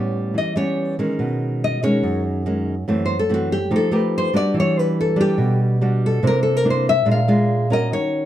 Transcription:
Already playing: A2 G3 B3 C#4
0.34 E3 D#5
0.56 G3 B3 C#4 C#5
0.99 D#3 G#3 C#4
1.19 B2
1.64 D#5
1.83 D#3 G#3 C#4 C#5
2.03 F#2
2.46 D#3 G#3 C#4
2.88 F#2 E3 A3 C4
3.06 C5
3.19 A4
3.29 E3 A3 C4
3.34 F#4
3.52 G4
3.71 F3 A3 D#4 G4
3.76 A4
3.91 A3 D#4 G4 B4
4.18 C5
4.33 G3 D4 F#4 D5
4.54 E3
4.60 C#5
4.79 B4
5.01 A4
5.16 G3 D4
5.21 G4
5.38 B2
5.81 G3 D4 F#4
6.06 A4
6.23 C3 A#3 D4 E4
6.27 A#4
6.43 A4
6.57 A#4
6.65 A#3 D4 E4
6.70 C5
6.89 E5
7.05 A#2 G#3 D4 F4
7.11 F5
7.28 G#3 D4 F4
7.70 C#4 F#4 A#4 D#5
7.92 D#3 C#5

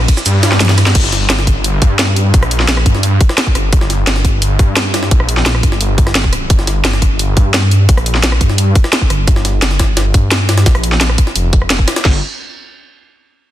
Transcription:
0.08 kick, closed hi-hat, ride
0.17 snare, shaker
0.26 G2, closed hi-hat, shaker
0.43 snare, closed hi-hat, ride, shaker
0.52 cross-stick, snare
0.60 snare, closed hi-hat, high tom, shaker
0.65 snare, closed hi-hat
0.69 snare, closed hi-hat
0.78 cross-stick, snare, closed hi-hat, ride, shaker
0.86 snare, closed hi-hat
0.95 G1, kick, closed hi-hat, crash
1.04 snare
1.12 snare, closed hi-hat
1.30 snare, closed hi-hat
1.39 snare
1.47 kick, closed hi-hat
1.64 closed hi-hat
1.82 G2, kick, closed hi-hat
1.99 snare, closed hi-hat
2.16 closed hi-hat
2.34 A#1, kick, closed hi-hat
2.43 cross-stick, closed hi-hat
2.51 closed hi-hat
2.60 snare
2.68 snare, closed hi-hat
2.77 cross-stick
2.86 G2, kick, closed hi-hat
2.95 snare
3.03 closed hi-hat
3.21 kick, closed hi-hat
3.29 cross-stick, snare
3.38 snare, closed hi-hat
3.47 kick
3.55 G1, cross-stick, closed hi-hat
3.73 G1, kick, closed hi-hat
3.81 snare
3.90 snare, closed hi-hat
4.07 snare, closed hi-hat
4.16 snare
4.25 kick, closed hi-hat
4.42 closed hi-hat
4.59 G2, kick, closed hi-hat
4.77 snare, closed hi-hat
4.94 snare, closed hi-hat
5.03 snare
5.11 A#1, kick, closed hi-hat
5.20 cross-stick
5.29 closed hi-hat
5.37 snare
5.46 snare, closed hi-hat
5.55 cross-stick
5.63 G1, kick, closed hi-hat
5.72 snare
5.81 G1, closed hi-hat
5.98 kick, closed hi-hat
6.07 cross-stick, snare
6.15 snare, closed hi-hat
6.24 kick
6.33 cross-stick, closed hi-hat
6.50 G1, kick, closed hi-hat
6.59 snare
6.67 snare, closed hi-hat
6.85 snare, closed hi-hat
6.93 snare
7.02 kick, closed hi-hat
7.19 closed hi-hat
7.37 G2, kick, closed hi-hat
7.54 snare, closed hi-hat
7.71 closed hi-hat
7.89 A#1, kick, closed hi-hat
7.97 cross-stick, closed hi-hat
8.06 closed hi-hat
8.15 snare
8.23 snare, closed hi-hat
8.32 cross-stick
8.41 G2, kick, closed hi-hat
8.50 snare
8.58 closed hi-hat
8.75 kick, closed hi-hat
8.84 cross-stick, snare
8.93 snare, closed hi-hat
9.02 kick
9.10 G1, cross-stick, closed hi-hat
9.27 G1, kick, closed hi-hat
9.36 snare
9.45 snare, closed hi-hat
9.62 snare, closed hi-hat
9.71 snare
9.79 kick, snare, closed hi-hat
9.97 snare, closed hi-hat
10.14 G2, kick, closed hi-hat
10.31 snare, closed hi-hat
10.49 snare, closed hi-hat
10.58 snare, closed hi-hat
10.66 A#1, kick, snare, closed hi-hat
10.75 cross-stick, closed hi-hat
10.84 closed hi-hat
10.92 snare
11.01 snare, closed hi-hat
11.10 cross-stick
11.18 kick, closed hi-hat
11.27 snare
11.36 F1, closed hi-hat
11.53 F1, kick, closed hi-hat
11.62 cross-stick
11.70 snare, closed hi-hat
11.79 kick
11.88 cross-stick, snare, closed hi-hat
11.96 snare, closed hi-hat
12.05 G1, kick, snare, crash

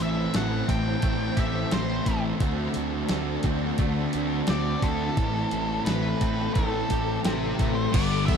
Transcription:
Already playing: A2 E3 A3 C4 C5 A5
0.00 A1 E3 A3 C4 E4 E5, open hi-hat
0.34 A1 A2 E3 A3 C4 E4 F#5, snare, open hi-hat
0.68 A1 E3 A3 C4 E4 G5, kick, open hi-hat
1.01 A1 A2 E3 A3 C4 E4, kick, open hi-hat
1.37 A1 E3 A3 C4 E4 G4 E5, kick, open hi-hat
1.70 A1 A2 E3 A3 C4 E4 C5, snare, open hi-hat
2.06 A1 E3 A3 C4 E4, kick, open hi-hat
2.40 D2 D3 A3 C4 D4 F#4 D5 A5, kick, open hi-hat
2.73 D2 A3 C4 D4 F#4, open hi-hat
3.09 D2 D3 A3 C4 D4 F#4, snare, open hi-hat
3.43 D2 A3 C4 D4 F#4, kick, open hi-hat
3.78 D2 D3 A3 C4 D4 F#4, kick, open hi-hat
4.13 D2 A3 C4 D4 F#4, open hi-hat
4.47 D2 D3 A3 C4 D4 F#4 D5, snare, open hi-hat
4.82 D2 A3 C4 D4 F#4 A4, kick, open hi-hat
5.17 A1 A2 E3 A3 C4 E4 A4 G5, kick, open hi-hat
5.51 A1 E3 A3 C4 E4, open hi-hat
5.85 A1 A2 E3 A3 C4 E4 B4, snare, open hi-hat
6.21 A1 E3 A3 C4 E4, kick, open hi-hat
6.54 A1 A2 E3 A3 C4 E4 A4, kick, open hi-hat
6.90 A1 E3 A3 C4 E4 G4, kick, open hi-hat
7.24 A1 A2 E3 A3 C4 E4 G4 C5, snare, open hi-hat
7.58 A1 E3 A3 C4 E4, kick, open hi-hat
7.93 G1 G2 D3 B3 D4 G4 D5 F#5 B5, kick, crash, tambourine
7.97 G3
8.26 E2 B3 E5, kick, tambourine, crash

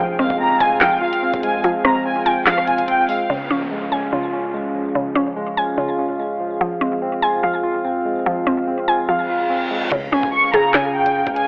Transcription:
Already playing: F4 G#4 F5
0.00 F1 F3 C4
0.19 C2 G#3 C4 F5
0.30 F1, kick
0.40 C4 A#5
0.60 F1 F4 G#5, kick, closed hi-hat
0.81 F3 F5 G5, snare, clap, closed hi-hat
1.01 F4 F5
1.13 closed hi-hat
1.23 C4
1.34 F1, kick, closed hi-hat
1.43 G#3 G#5, closed hi-hat
1.54 F2
1.64 F3, closed hi-hat
1.84 G#3 C4 A#5, cross-stick
2.05 C4 G#5
2.26 F4 G5 G#5, closed hi-hat
2.47 F3 F5, snare, clap, closed hi-hat
2.58 cross-stick
2.67 F4 G#5, closed hi-hat
2.78 closed hi-hat
2.88 C4 G5, closed hi-hat
3.09 G#3 F5, open hi-hat
3.29 C#3 C#4 F4 G#4 F5, downlifter
3.50 F3 C#4
3.71 G#3
3.91 C#4 G#5
4.12 C#3 F4
4.33 C#4
4.54 G#3
4.74 F3
4.95 C#3
5.15 F3 C#4
5.36 G#3
5.57 C#4 G#5
5.77 C#3 F4
5.99 C#4
6.19 G#3
6.40 F3
6.61 F3 C4
6.81 G#3 C4
7.02 C4
7.22 F4 G#5
7.43 F3 F5
7.63 F4
7.85 C4
8.05 G#3
8.26 F3
8.46 G#3 C4
8.68 C4
8.88 F4 G#5
9.09 F3 F5, reverse cymbal
9.29 F4
9.50 C4
9.71 G#3
9.92 C#2 C#3 C#4 F4 G#4 F5, kick, closed hi-hat, crash, impact
10.12 C#2 C#4 G#5
10.23 C#2, kick
10.33 C#6
10.54 C#3 G#4 A#5, kick, closed hi-hat
10.74 C#3 G#5, snare, clap, closed hi-hat
10.95 G5
11.06 closed hi-hat
11.27 C#2, kick, closed hi-hat
11.36 G#5, closed hi-hat

